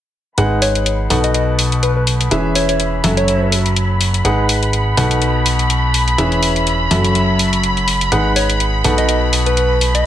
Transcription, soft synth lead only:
0, 0, Header, 1, 2, 480
1, 0, Start_track
1, 0, Tempo, 483871
1, 374, Time_signature, 4, 2, 24, 8
1, 9981, End_track
2, 0, Start_track
2, 0, Title_t, "Soft synth lead"
2, 0, Program_c, 0, 80
2, 613, Note_on_c, 0, 73, 93
2, 786, Note_off_c, 0, 73, 0
2, 1227, Note_on_c, 0, 75, 88
2, 1296, Note_off_c, 0, 75, 0
2, 1334, Note_on_c, 0, 75, 74
2, 1420, Note_off_c, 0, 75, 0
2, 1814, Note_on_c, 0, 71, 83
2, 1900, Note_off_c, 0, 71, 0
2, 1948, Note_on_c, 0, 71, 71
2, 2016, Note_off_c, 0, 71, 0
2, 2535, Note_on_c, 0, 73, 83
2, 2620, Note_off_c, 0, 73, 0
2, 2668, Note_on_c, 0, 73, 74
2, 2736, Note_off_c, 0, 73, 0
2, 3147, Note_on_c, 0, 73, 99
2, 3493, Note_off_c, 0, 73, 0
2, 8294, Note_on_c, 0, 73, 90
2, 8467, Note_off_c, 0, 73, 0
2, 8908, Note_on_c, 0, 75, 89
2, 8976, Note_off_c, 0, 75, 0
2, 9015, Note_on_c, 0, 75, 73
2, 9100, Note_off_c, 0, 75, 0
2, 9388, Note_on_c, 0, 71, 95
2, 9841, Note_off_c, 0, 71, 0
2, 9868, Note_on_c, 0, 75, 91
2, 9981, Note_off_c, 0, 75, 0
2, 9981, End_track
0, 0, End_of_file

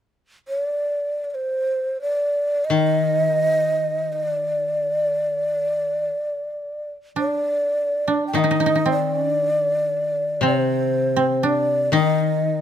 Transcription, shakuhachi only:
0, 0, Header, 1, 2, 480
1, 0, Start_track
1, 0, Tempo, 500000
1, 12108, End_track
2, 0, Start_track
2, 0, Title_t, "Shakuhachi"
2, 0, Program_c, 0, 77
2, 462, Note_on_c, 0, 73, 52
2, 578, Note_off_c, 0, 73, 0
2, 578, Note_on_c, 0, 74, 52
2, 1192, Note_off_c, 0, 74, 0
2, 1192, Note_on_c, 0, 74, 43
2, 1253, Note_off_c, 0, 74, 0
2, 1253, Note_on_c, 0, 74, 51
2, 1293, Note_on_c, 0, 72, 56
2, 1302, Note_off_c, 0, 74, 0
2, 1929, Note_off_c, 0, 72, 0
2, 1935, Note_on_c, 0, 74, 65
2, 2542, Note_on_c, 0, 75, 79
2, 2556, Note_off_c, 0, 74, 0
2, 3960, Note_off_c, 0, 75, 0
2, 3960, Note_on_c, 0, 75, 65
2, 4085, Note_off_c, 0, 75, 0
2, 4085, Note_on_c, 0, 74, 65
2, 6643, Note_off_c, 0, 74, 0
2, 6906, Note_on_c, 0, 74, 57
2, 7912, Note_off_c, 0, 74, 0
2, 7945, Note_on_c, 0, 79, 46
2, 8060, Note_on_c, 0, 75, 64
2, 8075, Note_off_c, 0, 79, 0
2, 8540, Note_off_c, 0, 75, 0
2, 8562, Note_on_c, 0, 74, 64
2, 9989, Note_off_c, 0, 74, 0
2, 10045, Note_on_c, 0, 72, 65
2, 10994, Note_on_c, 0, 74, 64
2, 11009, Note_off_c, 0, 72, 0
2, 11460, Note_off_c, 0, 74, 0
2, 11468, Note_on_c, 0, 75, 60
2, 12108, Note_off_c, 0, 75, 0
2, 12108, End_track
0, 0, End_of_file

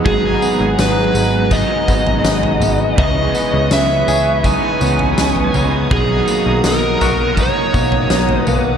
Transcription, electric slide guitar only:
0, 0, Header, 1, 2, 480
1, 0, Start_track
1, 0, Key_signature, 5, "minor"
1, 0, Tempo, 731707
1, 39, Time_signature, 4, 2, 24, 8
1, 5756, End_track
2, 0, Start_track
2, 0, Title_t, "Electric slide guitar"
2, 0, Program_c, 0, 29
2, 41, Note_on_c, 0, 68, 89
2, 526, Note_on_c, 0, 71, 89
2, 534, Note_off_c, 0, 68, 0
2, 1001, Note_on_c, 0, 75, 102
2, 1016, Note_off_c, 0, 71, 0
2, 1956, Note_off_c, 0, 75, 0
2, 1964, Note_on_c, 0, 75, 104
2, 2446, Note_off_c, 0, 75, 0
2, 2448, Note_on_c, 0, 76, 105
2, 2925, Note_on_c, 0, 80, 104
2, 2938, Note_off_c, 0, 76, 0
2, 3887, Note_on_c, 0, 68, 98
2, 3910, Note_off_c, 0, 80, 0
2, 4336, Note_off_c, 0, 68, 0
2, 4378, Note_on_c, 0, 70, 99
2, 4858, Note_on_c, 0, 73, 99
2, 4863, Note_off_c, 0, 70, 0
2, 5514, Note_off_c, 0, 73, 0
2, 5514, Note_on_c, 0, 71, 99
2, 5756, Note_off_c, 0, 71, 0
2, 5756, End_track
0, 0, End_of_file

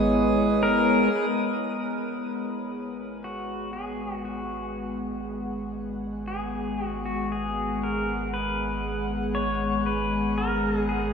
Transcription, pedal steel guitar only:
0, 0, Header, 1, 2, 480
1, 0, Start_track
1, 0, Key_signature, 5, "minor"
1, 0, Tempo, 1036269
1, 530, Time_signature, 4, 2, 24, 8
1, 1962, Tempo, 1018676
1, 5211, End_track
2, 0, Start_track
2, 0, Title_t, "Pedal steel guitar"
2, 0, Program_c, 0, 26
2, 291, Note_on_c, 0, 70, 89
2, 532, Note_off_c, 0, 70, 0
2, 534, Note_on_c, 0, 71, 94
2, 1502, Note_on_c, 0, 66, 74
2, 1518, Note_off_c, 0, 71, 0
2, 1726, Note_off_c, 0, 66, 0
2, 1728, Note_on_c, 0, 68, 76
2, 1967, Note_off_c, 0, 68, 0
2, 1969, Note_on_c, 0, 66, 64
2, 2309, Note_off_c, 0, 66, 0
2, 2923, Note_on_c, 0, 68, 74
2, 3201, Note_off_c, 0, 68, 0
2, 3201, Note_on_c, 0, 66, 74
2, 3289, Note_off_c, 0, 66, 0
2, 3291, Note_on_c, 0, 66, 69
2, 3415, Note_on_c, 0, 68, 85
2, 3416, Note_off_c, 0, 66, 0
2, 3658, Note_on_c, 0, 70, 81
2, 3662, Note_off_c, 0, 68, 0
2, 3892, Note_off_c, 0, 70, 0
2, 3894, Note_on_c, 0, 71, 95
2, 4232, Note_off_c, 0, 71, 0
2, 4371, Note_on_c, 0, 73, 105
2, 4612, Note_off_c, 0, 73, 0
2, 4613, Note_on_c, 0, 71, 80
2, 4854, Note_off_c, 0, 71, 0
2, 4856, Note_on_c, 0, 70, 90
2, 5097, Note_off_c, 0, 70, 0
2, 5097, Note_on_c, 0, 68, 77
2, 5211, Note_off_c, 0, 68, 0
2, 5211, End_track
0, 0, End_of_file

